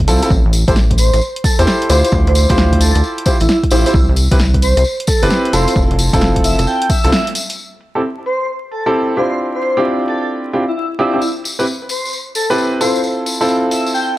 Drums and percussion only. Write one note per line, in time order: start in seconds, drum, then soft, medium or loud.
0.08 open hi-hat loud
0.08 tambourine loud
0.23 closed hi-hat medium
0.23 tambourine medium
0.30 kick loud
0.30 tambourine soft
0.53 open hi-hat loud
0.53 tambourine loud
0.68 kick loud
0.68 closed hi-hat medium
0.68 tambourine medium
0.76 snare loud
0.76 tambourine soft
0.91 kick medium
0.91 closed hi-hat medium
0.98 open hi-hat loud
0.98 tambourine medium
1.14 cross-stick medium
1.14 closed hi-hat medium
1.14 tambourine medium
1.21 tambourine soft
1.36 closed hi-hat medium
1.44 kick loud
1.44 open hi-hat loud
1.44 tambourine medium
1.59 cross-stick medium
1.59 closed hi-hat medium
1.59 tambourine medium
1.67 snare loud
1.67 tambourine soft
1.82 closed hi-hat soft
1.89 open hi-hat loud
1.89 tambourine medium
2.04 closed hi-hat medium
2.04 tambourine soft
2.12 kick loud
2.12 tambourine soft
2.27 closed hi-hat soft
2.35 open hi-hat loud
2.35 tambourine medium
2.49 kick loud
2.49 closed hi-hat medium
2.49 tambourine medium
2.57 snare loud
2.57 tambourine soft
2.73 kick medium
2.73 closed hi-hat medium
2.81 open hi-hat loud
2.81 tambourine loud
2.95 cross-stick medium
2.95 closed hi-hat medium
2.95 tambourine soft
3.04 tambourine soft
3.18 closed hi-hat medium
3.26 kick loud
3.26 open hi-hat loud
3.26 tambourine medium
3.40 cross-stick medium
3.40 closed hi-hat medium
3.40 tambourine soft
3.49 snare loud
3.49 tambourine soft
3.63 kick medium
3.63 closed hi-hat soft
3.71 open hi-hat loud
3.71 tambourine medium
3.86 closed hi-hat medium
3.86 tambourine medium
3.94 kick loud
3.94 tambourine soft
4.16 open hi-hat loud
4.16 tambourine medium
4.31 kick loud
4.31 closed hi-hat medium
4.31 tambourine medium
4.39 snare loud
4.39 tambourine soft
4.54 kick medium
4.54 closed hi-hat medium
4.62 open hi-hat loud
4.62 tambourine medium
4.77 cross-stick medium
4.77 closed hi-hat medium
4.77 tambourine medium
4.84 tambourine soft
5.00 closed hi-hat medium
5.07 kick loud
5.07 open hi-hat loud
5.07 tambourine medium
5.23 cross-stick medium
5.23 closed hi-hat medium
5.23 tambourine soft
5.30 snare loud
5.30 tambourine soft
5.45 closed hi-hat soft
5.53 open hi-hat loud
5.53 tambourine medium
5.67 closed hi-hat medium
5.67 tambourine soft
5.76 kick loud
5.76 tambourine soft
5.91 closed hi-hat soft
5.99 open hi-hat loud
5.99 tambourine loud
6.13 kick loud
6.13 closed hi-hat medium
6.13 tambourine medium
6.21 snare loud
6.21 tambourine soft
6.36 kick medium
6.36 closed hi-hat medium
6.44 open hi-hat loud
6.44 tambourine medium
6.59 cross-stick medium
6.59 closed hi-hat medium
6.59 tambourine soft
6.67 tambourine soft
6.82 closed hi-hat medium
6.89 kick loud
6.89 open hi-hat loud
6.89 tambourine medium
7.04 cross-stick medium
7.04 closed hi-hat medium
7.04 tambourine medium
7.12 snare loud
7.12 tambourine soft
7.27 closed hi-hat soft
7.35 open hi-hat loud
7.35 tambourine medium
7.50 closed hi-hat medium
7.50 tambourine soft
7.81 open hi-hat loud
8.26 open hi-hat loud
8.71 open hi-hat loud
9.17 open hi-hat loud
9.62 open hi-hat loud
10.08 open hi-hat loud
10.53 open hi-hat loud
10.99 open hi-hat loud
11.22 tambourine soft
11.44 open hi-hat medium
11.44 tambourine medium
11.60 tambourine medium
11.67 tambourine soft
11.89 open hi-hat loud
11.89 tambourine medium
12.05 tambourine soft
12.13 tambourine soft
12.35 open hi-hat medium
12.35 tambourine medium
12.51 tambourine soft
12.58 tambourine soft
12.81 open hi-hat loud
12.81 tambourine medium
12.95 tambourine medium
13.04 tambourine soft
13.26 open hi-hat medium
13.26 tambourine medium
13.41 tambourine medium
13.48 tambourine soft
13.71 open hi-hat loud
13.71 tambourine loud
13.86 tambourine medium
13.95 tambourine soft